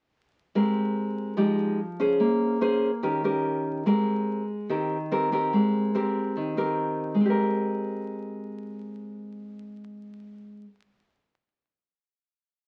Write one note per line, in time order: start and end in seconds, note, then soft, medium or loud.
0.55 1.36 G#3 medium
0.55 1.35 C4 soft
0.55 1.35 G4 soft
0.55 1.35 A#4 medium
1.37 2.18 F3 soft
1.37 1.79 G#3 soft
1.37 1.79 D#4 soft
1.37 1.79 G4 soft
2.00 2.59 C#4 medium
2.00 2.59 G#4 medium
2.00 2.59 C5 medium
2.20 3.01 A#3 medium
2.61 2.90 C#4 medium
2.61 2.90 G#4 medium
2.61 2.90 C5 medium
3.03 3.84 D#3 soft
3.03 3.21 C#4 soft
3.03 3.21 G4 soft
3.03 3.21 A#4 soft
3.24 3.83 C#4 soft
3.24 3.84 G4 soft
3.24 3.84 A#4 medium
3.86 4.67 G#3 medium
3.86 4.42 C4 soft
3.86 4.43 G4 soft
3.86 4.43 A#4 medium
4.69 5.51 D#3 soft
4.69 4.96 C4 soft
4.69 4.96 G4 soft
4.69 4.97 A#4 soft
5.11 5.29 C4 medium
5.11 5.29 G4 medium
5.11 5.29 A#4 medium
5.32 5.91 C4 medium
5.32 5.91 G4 medium
5.32 5.92 A#4 medium
5.53 6.34 G#3 medium
5.95 6.53 C4 medium
5.95 6.54 G4 soft
5.95 6.54 A#4 medium
6.37 7.17 D#3 medium
6.57 7.16 C4 soft
6.57 7.16 G4 soft
6.57 7.16 A#4 medium
7.14 10.64 G#3 soft
7.21 10.71 C4 soft
7.26 10.76 G4 soft
7.30 10.80 A#4 medium